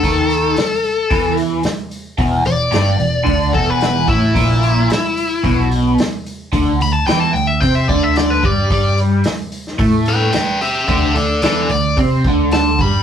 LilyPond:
<<
  \new Staff \with { instrumentName = "Lead electric guitar" } { \time 4/4 \key d \mixolydian \tempo 4 = 110 a'2~ a'8 r4. | r8 d''2 a'16 b'8. e'8~ | e'2~ e'8 r4. | r8 b''16 a''16 g''16 a''16 g''16 e''16 g''16 e''16 d''16 e''16 d''16 b'16 d''8 |
d''8 r2 <b' g''>8 <b' g''>8 <g' e''>8 | <g' e''>8 <a' d''>8 <a' d''>8 d''8 r4 a''8 b''8 | }
  \new Staff \with { instrumentName = "Overdriven electric guitar" } { \clef bass \time 4/4 \key d \mixolydian dis4 r4 e4 r4 | e,8 e,8 g,8 e,8 d8 e,4 a,8 | ais,4 r4 b,4 r4 | d8 d8 e8 d8 c'8 d4 g8 |
g4 r4 a4 r4 | d8 d8 e8 d8 c'8 d4 g8 | }
  \new Staff \with { instrumentName = "Picked electric bass" } { \clef bass \time 4/4 \key d \mixolydian dis,4 r4 e,4 r4 | e,,8 e,,8 g,,8 e,,8 d,8 e,,4 a,,8 | ais,,4 r4 b,,4 r4 | d,8 d,8 e,8 d,8 c8 d,4 g,8 |
g,4 r4 a,4 r4 | d,8 d,8 e,8 d,8 c8 d,4 g,8 | }
  \new DrumStaff \with { instrumentName = "Drums" } \drummode { \time 4/4 <hho bd>8 hho8 <hho sn>8 hho8 <hho bd>8 hho8 <hho sn>8 hho8 | <hho bd>8 hho8 <hho sn>8 hho8 <hho bd>8 <hho bd>8 <hho sn>8 <hho bd>8 | <hho bd>8 hho8 <hho sn>8 hho8 <hho bd>8 hho8 <hho sn>8 hho8 | <hho bd>8 hho8 <hho sn>8 hho8 <hho bd>8 <hho bd>8 <hho sn>8 <hho bd>8 |
<hho bd>8 hho8 <hho sn>8 hho16 sn16 <hho bd>8 hho8 <hho sn>8 hho8 | <hho bd>8 hho8 <hho sn>8 hho8 <hho bd>8 <hho bd>8 <hho sn>8 <hho bd>8 | }
>>